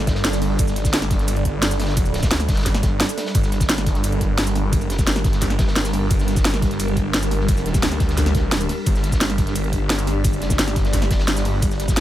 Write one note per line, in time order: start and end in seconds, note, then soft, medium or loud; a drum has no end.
0.00 12.00 G3 medium
0.00 12.00 D4 medium
0.00 3.31 A4 medium
0.00 3.33 D5 loud
0.07 0.58 G1 loud
0.07 kick loud
0.07 snare loud
0.07 closed hi-hat medium
0.15 snare loud
0.15 closed hi-hat medium
0.24 snare loud
0.24 closed hi-hat loud
0.24 ride medium
0.24 shaker medium
0.33 snare loud
0.33 closed hi-hat medium
0.33 closed hi-hat soft
0.33 shaker medium
0.42 snare soft
0.42 open hi-hat medium
0.59 0.92 G1 loud
0.59 kick loud
0.59 closed hi-hat loud
0.59 closed hi-hat medium
0.59 ride medium
0.59 shaker medium
0.68 snare soft
0.68 shaker soft
0.76 snare soft
0.76 closed hi-hat medium
0.85 kick loud
0.85 snare medium
0.85 shaker medium
0.93 1.44 G1 loud
0.93 snare loud
0.93 closed hi-hat loud
0.93 closed hi-hat medium
0.93 ride medium
0.93 shaker medium
1.02 snare medium
1.02 closed hi-hat soft
1.02 shaker soft
1.11 kick loud
1.11 snare soft
1.11 closed hi-hat medium
1.19 snare soft
1.19 closed hi-hat soft
1.28 closed hi-hat loud
1.28 ride medium
1.28 shaker medium
1.37 closed hi-hat soft
1.45 2.30 G1 loud
1.45 kick medium
1.45 closed hi-hat medium
1.62 snare loud
1.62 closed hi-hat loud
1.62 closed hi-hat medium
1.62 ride medium
1.62 shaker medium
1.71 snare soft
1.71 closed hi-hat soft
1.71 shaker medium
1.79 snare medium
1.79 snare soft
1.79 closed hi-hat medium
1.79 open hi-hat medium
1.84 snare medium
1.84 closed hi-hat medium
1.88 snare loud
1.88 closed hi-hat medium
1.97 kick loud
1.97 closed hi-hat loud
1.97 closed hi-hat medium
1.97 ride medium
1.97 shaker medium
2.06 closed hi-hat soft
2.06 shaker soft
2.14 snare medium
2.14 closed hi-hat medium
2.18 snare medium
2.18 closed hi-hat medium
2.23 kick loud
2.23 snare loud
2.23 snare soft
2.23 closed hi-hat medium
2.23 shaker medium
2.31 2.47 D2 loud
2.31 snare loud
2.31 closed hi-hat loud
2.31 closed hi-hat medium
2.31 ride medium
2.31 shaker medium
2.40 snare medium
2.40 closed hi-hat soft
2.40 shaker soft
2.48 2.82 G1 loud
2.48 kick loud
2.48 snare medium
2.48 closed hi-hat medium
2.53 snare medium
2.53 closed hi-hat medium
2.57 snare medium
2.57 closed hi-hat soft
2.57 closed hi-hat medium
2.61 snare medium
2.61 closed hi-hat medium
2.66 kick medium
2.66 snare soft
2.66 closed hi-hat loud
2.66 closed hi-hat medium
2.66 ride medium
2.66 shaker medium
2.74 snare medium
2.74 closed hi-hat soft
2.83 3.00 G1 loud
2.83 kick loud
2.83 snare soft
2.83 closed hi-hat medium
2.83 shaker soft
3.00 snare loud
3.00 closed hi-hat medium
3.00 closed hi-hat loud
3.00 ride medium
3.00 shaker medium
3.09 closed hi-hat soft
3.09 shaker medium
3.17 snare loud
3.17 snare soft
3.17 closed hi-hat medium
3.17 open hi-hat medium
3.17 shaker soft
3.26 snare loud
3.26 closed hi-hat medium
3.34 3.68 G1 loud
3.34 12.00 G4 medium
3.34 8.84 A#4 medium
3.34 kick loud
3.34 closed hi-hat loud
3.34 ride medium
3.34 shaker soft
3.43 snare soft
3.43 shaker soft
3.52 snare soft
3.52 closed hi-hat medium
3.60 kick loud
3.60 snare medium
3.60 shaker medium
3.69 4.20 G1 loud
3.69 snare loud
3.69 closed hi-hat loud
3.69 closed hi-hat medium
3.69 ride medium
3.69 shaker medium
3.78 snare medium
3.78 closed hi-hat soft
3.78 shaker soft
3.86 kick loud
3.86 snare soft
3.86 closed hi-hat medium
3.95 snare soft
3.95 closed hi-hat soft
4.04 closed hi-hat loud
4.04 ride medium
4.04 shaker medium
4.12 closed hi-hat soft
4.21 4.81 G1 loud
4.21 kick medium
4.21 closed hi-hat medium
4.38 snare loud
4.38 closed hi-hat loud
4.38 closed hi-hat medium
4.38 ride medium
4.38 shaker medium
4.47 snare soft
4.47 closed hi-hat soft
4.47 shaker medium
4.55 snare soft
4.55 closed hi-hat medium
4.55 open hi-hat medium
4.73 kick loud
4.73 closed hi-hat medium
4.73 ride medium
4.73 shaker soft
4.81 5.06 F#1 loud
4.81 closed hi-hat soft
4.81 shaker soft
4.90 snare medium
4.90 closed hi-hat medium
4.98 kick loud
4.98 snare soft
4.98 shaker medium
5.07 5.58 G1 loud
5.07 snare loud
5.07 closed hi-hat loud
5.07 closed hi-hat medium
5.07 ride medium
5.07 shaker soft
5.16 snare medium
5.16 closed hi-hat soft
5.16 shaker soft
5.24 kick loud
5.24 snare medium
5.24 closed hi-hat medium
5.33 snare medium
5.33 closed hi-hat soft
5.42 kick medium
5.42 snare soft
5.42 closed hi-hat loud
5.42 closed hi-hat medium
5.42 ride medium
5.42 shaker soft
5.50 snare medium
5.50 closed hi-hat soft
5.59 6.09 G1 loud
5.59 kick loud
5.59 snare loud
5.59 closed hi-hat medium
5.68 snare loud
5.68 closed hi-hat medium
5.76 snare loud
5.76 closed hi-hat medium
5.76 closed hi-hat loud
5.76 ride medium
5.76 shaker soft
5.84 snare loud
5.84 closed hi-hat medium
5.84 closed hi-hat soft
5.84 shaker medium
5.93 snare soft
5.93 open hi-hat medium
6.11 6.44 G1 loud
6.11 kick loud
6.11 closed hi-hat medium
6.11 ride medium
6.11 shaker soft
6.19 snare soft
6.19 shaker soft
6.28 snare soft
6.28 closed hi-hat medium
6.36 kick loud
6.36 snare medium
6.36 shaker medium
6.44 6.95 G1 loud
6.44 snare loud
6.44 closed hi-hat medium
6.44 closed hi-hat loud
6.44 ride medium
6.44 shaker soft
6.54 snare medium
6.54 closed hi-hat soft
6.54 shaker soft
6.62 kick loud
6.62 snare soft
6.62 closed hi-hat medium
6.71 snare soft
6.71 closed hi-hat soft
6.80 closed hi-hat medium
6.80 closed hi-hat loud
6.80 ride medium
6.80 shaker soft
6.88 closed hi-hat soft
6.96 7.82 G1 loud
6.96 kick medium
6.96 closed hi-hat medium
7.13 snare loud
7.13 closed hi-hat loud
7.13 ride medium
7.13 shaker soft
7.23 snare soft
7.23 closed hi-hat soft
7.23 shaker medium
7.31 snare soft
7.31 closed hi-hat medium
7.31 open hi-hat medium
7.40 snare soft
7.48 kick loud
7.48 snare soft
7.48 closed hi-hat medium
7.48 ride medium
7.48 shaker soft
7.57 closed hi-hat medium
7.57 shaker soft
7.66 snare soft
7.66 closed hi-hat medium
7.74 kick loud
7.74 snare soft
7.74 closed hi-hat medium
7.74 shaker medium
7.83 8.68 D2 loud
7.83 snare loud
7.83 closed hi-hat medium
7.83 ride medium
7.83 shaker medium
7.92 snare medium
7.92 closed hi-hat soft
7.92 shaker soft
8.00 kick loud
8.00 snare soft
8.00 closed hi-hat medium
8.09 snare medium
8.09 closed hi-hat soft
8.17 kick medium
8.17 snare soft
8.17 closed hi-hat medium
8.17 ride medium
8.17 shaker medium
8.26 snare medium
8.26 closed hi-hat soft
8.35 kick loud
8.35 snare soft
8.35 closed hi-hat medium
8.52 snare loud
8.52 closed hi-hat medium
8.52 ride medium
8.52 shaker soft
8.61 closed hi-hat soft
8.61 shaker medium
8.69 snare soft
8.69 open hi-hat medium
8.86 9.20 G1 loud
8.86 12.00 D5 loud
8.86 kick loud
8.86 closed hi-hat medium
8.86 ride medium
8.86 shaker medium
8.95 snare soft
8.95 shaker soft
9.04 snare soft
9.04 closed hi-hat medium
9.12 kick loud
9.12 snare medium
9.12 shaker medium
9.21 9.71 G1 loud
9.21 snare loud
9.21 closed hi-hat medium
9.21 ride medium
9.21 shaker medium
9.30 snare medium
9.30 closed hi-hat soft
9.30 shaker soft
9.38 kick loud
9.38 snare soft
9.38 closed hi-hat medium
9.47 snare soft
9.47 closed hi-hat soft
9.56 closed hi-hat medium
9.56 ride medium
9.56 shaker medium
9.64 closed hi-hat soft
9.73 10.33 G1 loud
9.73 kick medium
9.73 closed hi-hat medium
9.90 snare loud
9.90 closed hi-hat medium
9.90 ride medium
9.90 shaker medium
9.98 snare soft
9.98 closed hi-hat soft
9.98 shaker medium
10.07 snare soft
10.07 closed hi-hat medium
10.07 open hi-hat medium
10.24 kick loud
10.24 closed hi-hat medium
10.24 ride medium
10.24 shaker medium
10.33 10.58 F#1 loud
10.33 closed hi-hat soft
10.33 shaker soft
10.41 snare medium
10.41 closed hi-hat medium
10.50 kick loud
10.50 snare soft
10.50 shaker medium
10.58 11.09 G1 loud
10.58 snare loud
10.58 closed hi-hat loud
10.58 closed hi-hat medium
10.58 ride medium
10.58 shaker medium
10.67 snare medium
10.67 closed hi-hat soft
10.67 shaker soft
10.76 kick loud
10.76 snare soft
10.76 closed hi-hat medium
10.84 snare medium
10.84 closed hi-hat soft
10.93 kick medium
10.93 snare soft
10.93 closed hi-hat medium
10.93 closed hi-hat loud
10.93 ride medium
10.93 shaker medium
11.02 snare medium
11.02 closed hi-hat soft
11.11 11.61 G1 loud
11.11 kick loud
11.11 snare loud
11.11 closed hi-hat medium
11.19 snare loud
11.19 closed hi-hat medium
11.28 snare loud
11.28 closed hi-hat medium
11.28 ride medium
11.28 shaker medium
11.37 snare loud
11.37 closed hi-hat soft
11.37 closed hi-hat medium
11.37 shaker medium
11.44 snare soft
11.44 open hi-hat medium
11.62 11.95 G1 loud
11.62 kick loud
11.62 closed hi-hat medium
11.62 closed hi-hat loud
11.62 ride medium
11.62 shaker medium
11.71 snare soft
11.71 shaker soft
11.80 snare soft
11.80 closed hi-hat medium
11.88 kick loud
11.88 snare medium
11.88 shaker medium
11.96 12.00 G1 loud
11.96 snare loud
11.96 closed hi-hat medium
11.96 closed hi-hat loud
11.96 ride medium
11.96 shaker medium